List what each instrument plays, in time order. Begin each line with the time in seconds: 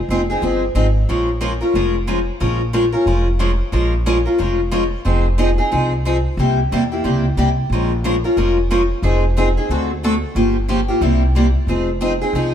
0.09 upright bass F1, steel-string acoustic guitar F3 C4 D#4 G#4
0.30 steel-string acoustic guitar C4 D#4 G#4
0.42 upright bass G1, steel-string acoustic guitar F3 C4 D#4 G#4
0.75 upright bass G#1, steel-string acoustic guitar F3 C4 D#4 G#4
1.09 upright bass A#1, steel-string acoustic guitar F3 G#3 C#4 F4 A#4
1.41 steel-string acoustic guitar F3 G#3 C#4 F4 A#4
1.61 steel-string acoustic guitar C#4 F4 A#4
1.74 upright bass F1, steel-string acoustic guitar F3 G#3 C#4 F4 A#4
2.07 steel-string acoustic guitar F3 G#3 C#4 F4 A#4
2.40 upright bass A#1, steel-string acoustic guitar F3 G#3 C#4 F4 A#4
2.73 steel-string acoustic guitar F3 G#3 C#4 F4 A#4
2.92 steel-string acoustic guitar C#4 F4 A#4
3.06 upright bass F1, steel-string acoustic guitar F3 G#3 C#4 F4 A#4
3.39 steel-string acoustic guitar F3 G#3 C#4 F4 A#4
3.72 upright bass A#1, steel-string acoustic guitar F3 G#3 C#4 F4 A#4
4.06 steel-string acoustic guitar F3 G#3 C#4 F4 A#4
4.26 steel-string acoustic guitar C#4 F4 A#4
4.38 upright bass F1, steel-string acoustic guitar F3 G#3 C#4 F4 A#4
4.71 steel-string acoustic guitar F3 G#3 C#4 F4 A#4
5.05 upright bass F1, steel-string acoustic guitar F3 C4 D#4 G#4
5.38 steel-string acoustic guitar F3 C4 D#4 G#4
5.58 steel-string acoustic guitar C4 D#4 G#4
5.71 upright bass C2, steel-string acoustic guitar F3 C4 D#4 G#4
6.05 steel-string acoustic guitar F3 C4 D#4 G#4
6.37 upright bass C2, steel-string acoustic guitar C3 G3 A#3 E4 G4
6.72 upright bass E2, steel-string acoustic guitar C3 G3 A#3 E4 G4
6.92 steel-string acoustic guitar A#3 E4 G4
7.04 upright bass C#2, steel-string acoustic guitar C3 G3 A#3 E4 G4
7.37 upright bass C2, steel-string acoustic guitar C3 G3 A#3 E4 G4
7.70 upright bass A#1, steel-string acoustic guitar F3 G#3 C#4 F4 A#4
8.04 steel-string acoustic guitar F3 G#3 C#4 F4 A#4
8.24 steel-string acoustic guitar C#4 F4 A#4
8.37 upright bass F1, steel-string acoustic guitar F3 G#3 C#4 F4 A#4
8.70 steel-string acoustic guitar F3 G#3 C#4 F4 A#4
9.02 upright bass F1, steel-string acoustic guitar F3 C4 D#4 G#4
9.37 steel-string acoustic guitar F3 C4 D#4 G#4
9.57 steel-string acoustic guitar C4 D#4 G#4
9.69 upright bass D2, steel-string acoustic guitar D3 A3 C4 F#4 A4
10.03 steel-string acoustic guitar D3 A3 C4 F#4 A4
10.35 upright bass G1, steel-string acoustic guitar C#3 F3 A#3 F4 G4
10.68 steel-string acoustic guitar C#3 F3 A#3 F4 G4
10.88 steel-string acoustic guitar A#3 F4 G4
11.01 upright bass C2, steel-string acoustic guitar C3 G3 A#3 E4 G4
11.35 steel-string acoustic guitar C3 G3 A#3 E4 G4
11.67 upright bass F1, steel-string acoustic guitar F3 C4 D#4 G#4
12.01 steel-string acoustic guitar F3 C4 D#4 G#4
12.21 steel-string acoustic guitar C4 D#4 G#4
12.33 upright bass C2, steel-string acoustic guitar F3 C4 D#4 G#4